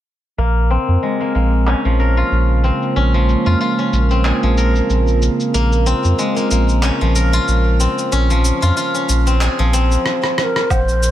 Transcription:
0.38 sub bass A#1, analog synth pad C#3, guzheng A#3
0.57 cabasa
0.70 guzheng C4, cabasa
0.88 sub bass F2, cabasa
1.02 analog synth pad G#3, guzheng G#3, cabasa
1.20 guzheng A#3, cabasa
1.35 sub bass A#1, guzheng A#3, cabasa
1.39 analog synth pad A#3
1.53 cabasa
1.67 guzheng C#4, clap, cabasa
1.85 sub bass A#1, guzheng F3
1.99 guzheng A#4, cabasa
2.17 guzheng F4, cabasa
2.32 sub bass A#1, cabasa
2.40 analog synth pad F4
2.64 guzheng C4, cabasa
2.71 analog synth pad A#4
2.82 cabasa
2.96 sub bass A#1, guzheng C#4, cabasa
3.14 guzheng F3, cabasa
3.29 cabasa
3.46 sub bass F2, guzheng F4, cabasa
3.61 guzheng F4, cabasa
3.79 guzheng C#4, cabasa
3.93 sub bass A#1, cabasa
4.11 guzheng C4, cabasa
4.25 guzheng G#4, clap, cabasa
4.43 sub bass A#1, guzheng F3
4.57 guzheng A#4, cabasa
4.75 cabasa
4.90 sub bass A#1, cabasa
5.08 cabasa
5.22 cabasa
5.40 cabasa
5.54 sub bass A#1, guzheng A#3, cabasa
5.72 cabasa
5.86 guzheng C4, cabasa
6.04 sub bass F2, cabasa
6.19 guzheng G#3, cabasa
6.36 guzheng A#3, cabasa
6.51 sub bass A#1, guzheng A#3, cabasa
6.69 cabasa
6.83 guzheng C#4, clap, cabasa
7.01 sub bass A#1, guzheng F3
7.15 guzheng A#4, cabasa
7.33 guzheng F4, cabasa
7.48 sub bass A#1, cabasa
7.80 guzheng C4, cabasa
7.98 cabasa
8.12 sub bass A#1, guzheng C#4, cabasa
8.30 guzheng F3, cabasa
8.45 cabasa
8.62 sub bass F2, guzheng F4, cabasa
8.77 guzheng F4, cabasa
8.95 guzheng C#4, cabasa
9.09 sub bass A#1, cabasa
9.27 guzheng C4, cabasa
9.41 guzheng G#4, clap, cabasa
9.59 sub bass A#1, guzheng F3
9.73 guzheng C4, cabasa
9.92 cabasa
10.06 cross-stick
10.23 cross-stick
10.38 ney C5, cross-stick
10.43 ney A#4
10.56 cross-stick
10.70 sub bass A#1, ney C5, kick, cabasa, low woodblock
10.88 cabasa
11.03 cabasa

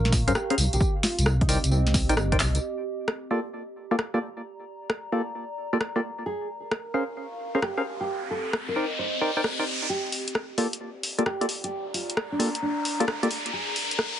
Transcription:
Already playing: wobble bass A#1, ambient pad A#4 F5 C#6
0.05 snare
0.12 kick, snare, open hi-hat, tambourine
0.28 wobble bass A#2, synth stab C#4 G#4 A#4 C5 F5, closed hi-hat, tambourine
0.35 nylon-string guitar G4, cross-stick, tambourine
0.50 synth stab C#4 G#4 A#4 C5 F5, closed hi-hat
0.58 wobble bass C2, ambient pad C4, open hi-hat, tambourine
0.73 wobble bass A#1, nylon-string guitar G4, ambient pad G4, closed hi-hat, tambourine
0.81 kick, tambourine
1.03 nylon-string guitar F4, snare, open hi-hat, tambourine
1.19 wobble bass C2, closed hi-hat, tambourine
1.26 cross-stick
1.41 nylon-string guitar D#4, kick, closed hi-hat
1.49 synth stab D#4 A#4 C5 D5 G5, ambient pad D#5, open hi-hat, tambourine
1.64 wobble bass C2, closed hi-hat, tambourine
1.71 nylon-string guitar C4, tambourine
1.87 snare
1.94 kick, snare, open hi-hat, tambourine
2.09 wobble bass G1, synth stab D#4 A#4 C5 D5 G5, closed hi-hat, tambourine
2.17 cross-stick, tambourine
2.32 synth stab D#4 A#4 C5 D5 G5, kick, closed hi-hat
2.40 wobble bass C2, clap, open hi-hat, tambourine
2.55 closed hi-hat, tambourine
3.08 cross-stick
3.31 synth stab A#3 F4 G4 A4 D5, ambient pad D5
3.35 ambient pad A#5
3.91 synth stab A#3 F4 G4 A4 D5
3.99 cross-stick
4.14 synth stab A#3 F4 G4 A4 D5
4.90 cross-stick
5.12 synth stab A#3 F4 G4 A4 D5
5.73 synth stab A#3 F4 G4 A4 D5
5.81 cross-stick
5.96 synth stab A#3 F4 G4 A4 D5
6.26 nylon-string guitar G#4, ambient pad A#4, riser
6.70 ambient pad F5, cross-stick
6.94 synth stab C#4 G#4 A#4 C5 F5
6.99 ambient pad C#6
7.55 synth stab C#4 G#4 A#4 C5 F5
7.62 nylon-string guitar G4, cross-stick
7.77 synth stab C#4 G#4 A#4 C5 F5
7.85 ambient pad C4
8.00 nylon-string guitar G4
8.31 nylon-string guitar A4
8.43 ambient pad D#5
8.52 ambient pad G4, cross-stick
8.68 nylon-string guitar A#4
8.76 synth stab D#4 A#4 C5 D5 G5
8.99 nylon-string guitar C5
9.21 synth stab D#4 A#4 C5 D5 G5
9.37 synth stab D#4 A#4 C5 D5 G5
9.44 cross-stick
9.59 synth stab D#4 A#4 C5 D5 G5
9.89 nylon-string guitar G4, riser
10.12 open hi-hat
10.24 ambient pad D5, closed hi-hat
10.35 cross-stick
10.58 synth stab A#3 F4 G4 A4 D5, open hi-hat
10.73 closed hi-hat
11.03 open hi-hat
11.18 synth stab A#3 F4 G4 A4 D5, closed hi-hat
11.26 nylon-string guitar G4, cross-stick
11.41 synth stab A#3 F4 G4 A4 D5, closed hi-hat
11.46 ambient pad A#5, open hi-hat
11.64 nylon-string guitar G4, closed hi-hat
11.94 nylon-string guitar F4, open hi-hat
12.10 closed hi-hat
12.17 cross-stick
12.32 nylon-string guitar D4
12.39 synth stab A#3 F4 G4 A4 D5, open hi-hat
12.55 closed hi-hat
12.62 nylon-string guitar D4
12.85 open hi-hat
13.00 synth stab A#3 F4 G4 A4 D5, closed hi-hat
13.08 cross-stick
13.23 synth stab A#3 F4 G4 A4 D5, closed hi-hat
13.31 open hi-hat
13.46 closed hi-hat
13.53 nylon-string guitar G#4, ambient pad A#4
13.76 open hi-hat
13.91 closed hi-hat
13.99 ambient pad F5, cross-stick

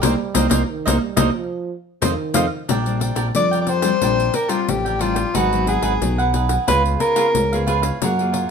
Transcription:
0.02 analog synth bass C2, trombone G3, nylon-string guitar A#3 C4 D#4, cavaquinho A#4 C5 D#5, pandeiro
0.34 analog synth bass C2, nylon-string guitar A#3 C4 D#4, cavaquinho A#4 C5 D#5, pandeiro
0.49 analog synth bass C2, nylon-string guitar A#3 C4 D#4, cavaquinho A#4 C5 D#5, pandeiro
0.68 trombone D#3
0.86 analog synth bass C2, nylon-string guitar A#3 C4 D#4, cavaquinho A#4 C5 D#5, pandeiro
1.01 trombone G3
1.17 analog synth bass C2, nylon-string guitar A#3 C4 D#4, cavaquinho A#4 C5 D#5, pandeiro
1.35 trombone F3
2.02 analog synth bass F2, trombone D#3, nylon-string guitar C4 D#4 F4, cavaquinho C5 D#5 F5, pandeiro
2.34 analog synth bass F2, nylon-string guitar C4 D#4 F4, cavaquinho C5 D#5 F5, pandeiro
2.68 analog synth bass A#1, nylon-string guitar A#2 G3 C4 D4, cavaquinho D4 A#4 D5 G5, pandeiro
2.86 nylon-string guitar G3 C4 D4, pandeiro
3.00 cavaquinho D4 A#4 D5 G5, pandeiro
3.15 analog synth bass A#1, cavaquinho D4 A#4 D5 G5, pandeiro
3.35 analog synth bass F2, nylon-string guitar F3 G3 C4 D4, soprano saxophone D5, pandeiro
3.51 cavaquinho A#4 D5 G5, pandeiro
3.61 soprano saxophone D5
3.66 cavaquinho D4 A#4 D5 G5, soprano saxophone C5, pandeiro
3.82 nylon-string guitar G3 C4 D4, cavaquinho A#4 D5 G5, pandeiro
4.01 analog synth bass A#1, nylon-string guitar A#2 G3 C4 D4, cavaquinho D4 A#4 D5 G5, pandeiro
4.20 pandeiro
4.33 cavaquinho D4 A#4 D5 G5, soprano saxophone A#4, pandeiro
4.48 nylon-string guitar G3 C4 D4, cavaquinho D4 A#4 D5 G5, soprano saxophone F4, pandeiro
4.69 analog synth bass A1, nylon-string guitar F3, soprano saxophone G4, pandeiro
4.85 cavaquinho A#4 D5 G5, pandeiro
4.99 nylon-string guitar G3 C4 D4, cavaquinho D4 A#4 D5 G5, soprano saxophone F4, pandeiro
5.15 cavaquinho A#4 D5 G5, pandeiro
5.34 analog synth bass G#1, nylon-string guitar G#2 F#3 B3 D#4, cavaquinho D#4 G#4 B4 F#5, soprano saxophone F#4, pandeiro
5.53 nylon-string guitar F#3 B3 D#4, pandeiro
5.66 cavaquinho D#4 G#4 B4 F#5, soprano saxophone G#4, pandeiro
5.82 analog synth bass G#1, cavaquinho D#4 G#4 B4 F#5, pandeiro
6.01 analog synth bass B1, nylon-string guitar D#3 F#3 B3 D#4, pandeiro
6.18 cavaquinho G#4 B4 F#5, pandeiro
6.33 cavaquinho D#4 G#4 B4 F#5, pandeiro
6.49 cavaquinho G#4 B4 F#5, pandeiro
6.67 analog synth bass C#2, nylon-string guitar C#3 B3 F4 G#4, cavaquinho F4 B4 C#5 F5, soprano saxophone B4, pandeiro
6.85 pandeiro
7.00 cavaquinho F4 B4 C#5 F5, soprano saxophone A#4, pandeiro
7.16 nylon-string guitar B3 F4 G#4, cavaquinho F4 B4 C#5 F5, pandeiro
7.35 analog synth bass C#2, nylon-string guitar G#2, pandeiro
7.52 nylon-string guitar B3 F4 G#4, cavaquinho B4 C#5 F5, pandeiro
7.67 nylon-string guitar B3 F4 G#4, cavaquinho F4 B4 C#5 F5, pandeiro
7.82 cavaquinho B4 C#5 F5, pandeiro
8.02 analog synth bass F#2, nylon-string guitar F#3 A#3 F4 G#4, cavaquinho A#4 C#5 F#5, pandeiro
8.19 nylon-string guitar A#3 F4 G#4, pandeiro
8.33 cavaquinho F4 A#4 C#5 F#5, pandeiro

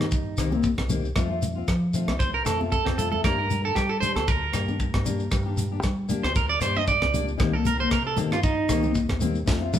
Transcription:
Already playing: clean electric guitar D#4
0.00 fingered electric bass G2, cross-stick
0.11 kick, shekere
0.37 fingered electric bass C2, steel-string acoustic guitar D#3 A#3 C4 G4, cross-stick, closed hi-hat, shekere
0.52 steel-string acoustic guitar A#3 C4 G4, high conga, shekere
0.63 kick, shekere
0.78 fingered electric bass C2, kick, cross-stick, high conga
0.89 steel-string acoustic guitar D#3 A#3 C4 G4, closed hi-hat, high conga, low conga, shekere
1.05 shekere
1.15 fingered electric bass F2, steel-string acoustic guitar A3 C4 F4, kick, cross-stick, low conga, shekere
1.30 steel-string acoustic guitar C4 F4
1.42 closed hi-hat, low conga, shekere
1.55 steel-string acoustic guitar C4 F4
1.68 fingered electric bass F3, kick, cross-stick, shekere
1.94 steel-string acoustic guitar A3 C4 F4, closed hi-hat, shekere
2.08 fingered electric bass C2, cross-stick, high conga
2.19 clean electric guitar C5, kick, shekere
2.34 clean electric guitar A#4
2.44 fingered electric bass F2, steel-string acoustic guitar A3 F4, clean electric guitar A4, muted steel-string acoustic guitar stroke, cross-stick, closed hi-hat, shekere
2.58 steel-string acoustic guitar C4 F4, high conga
2.72 clean electric guitar A4, kick, high conga, shekere
2.85 fingered electric bass F2, clean electric guitar C4, kick, cross-stick, high conga
2.98 steel-string acoustic guitar A3 C4 F4, clean electric guitar A4, closed hi-hat, low conga, shekere
3.12 clean electric guitar A4, low conga
3.24 fingered electric bass G2, steel-string acoustic guitar A#3 D4 G4, clean electric guitar A#4, kick, cross-stick, low conga, shekere
3.38 steel-string acoustic guitar D4 G4
3.50 closed hi-hat, low conga, shekere
3.64 steel-string acoustic guitar D4 G4, clean electric guitar A4
3.75 fingered electric bass G3, clean electric guitar G4, kick, cross-stick, shekere
3.89 clean electric guitar A4
4.00 steel-string acoustic guitar D4 G4, clean electric guitar C5, muted steel-string acoustic guitar stroke, closed hi-hat, low conga, shekere
4.16 fingered electric bass D2, clean electric guitar A4, cross-stick, high conga
4.28 clean electric guitar A#4, kick, shekere
4.52 fingered electric bass G2, steel-string acoustic guitar A#3 D4 G4, cross-stick, closed hi-hat, shekere
4.68 steel-string acoustic guitar D4 G4, high conga, shekere
4.80 kick, shekere
4.94 fingered electric bass G2, kick, cross-stick, high conga
5.04 steel-string acoustic guitar A#3 D4 G4, closed hi-hat, high conga, low conga, shekere
5.20 shekere
5.31 fingered electric bass G2, kick, cross-stick, low conga, shekere
5.46 steel-string acoustic guitar D4 G4
5.57 closed hi-hat, low conga, shekere
5.72 steel-string acoustic guitar D4 G4
5.83 fingered electric bass G3, kick, cross-stick, shekere
6.08 steel-string acoustic guitar A#3 D4 G4, closed hi-hat, low conga, shekere
6.23 fingered electric bass D2, clean electric guitar C5, cross-stick, high conga
6.35 clean electric guitar A#4, kick, shekere
6.49 clean electric guitar D5
6.61 fingered electric bass G2, steel-string acoustic guitar A#3 D4 G4, clean electric guitar C5, cross-stick, closed hi-hat, shekere
6.75 steel-string acoustic guitar D4 G4, clean electric guitar D#5, high conga, shekere
6.87 clean electric guitar D5, kick, shekere
7.02 fingered electric bass C#2, kick, cross-stick, high conga
7.13 steel-string acoustic guitar A#3 D4 G4, closed hi-hat, high conga, low conga, shekere
7.28 shekere
7.37 fingered electric bass C2, steel-string acoustic guitar D#3 A#3 C4 G4, muted clean electric guitar stroke, kick, cross-stick, low conga, shekere
7.53 steel-string acoustic guitar A#3, clean electric guitar A4, muted steel-string acoustic guitar stroke
7.65 clean electric guitar A#4, closed hi-hat, low conga, shekere
7.79 steel-string acoustic guitar A#3 C4 G4, clean electric guitar C5
7.91 fingered electric bass C3, clean electric guitar A#4, kick, cross-stick, shekere
8.07 clean electric guitar A4
8.17 steel-string acoustic guitar D#3 A#3 C4 G4, muted clean electric guitar stroke, closed hi-hat, low conga, shekere
8.31 fingered electric bass G2, clean electric guitar F4, cross-stick, high conga
8.43 clean electric guitar D#4, kick, shekere
8.68 fingered electric bass C2, steel-string acoustic guitar D#3 A#3 C4 G4, cross-stick, closed hi-hat, shekere
8.83 steel-string acoustic guitar A#3 C4 G4, high conga, shekere
8.95 kick, shekere
9.09 fingered electric bass D#2, kick, cross-stick, high conga
9.20 steel-string acoustic guitar D#3 A#3 C4 G4, closed hi-hat, high conga, low conga, shekere
9.35 shekere
9.46 fingered electric bass F2, steel-string acoustic guitar A3 C4 F4, kick, snare, low conga, shekere
9.61 steel-string acoustic guitar C4 F4
9.73 high tom, low conga, shekere

